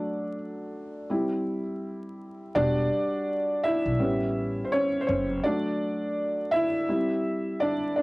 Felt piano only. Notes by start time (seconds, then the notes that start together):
Already playing: F#3 A3 D4 D5
1.10 G3 C4 E4
2.55 G3 D4 F#4 D5
3.63 E4 E5
3.99 G3 B3 C#4
4.64 C5
4.72 C#4 C#5
5.01 C5
5.07 C#4 C#5
5.43 F#3 A3 D4 D5
6.51 E4 E5
6.88 G3 C4 E4
7.60 D4 D5
7.96 D4 D5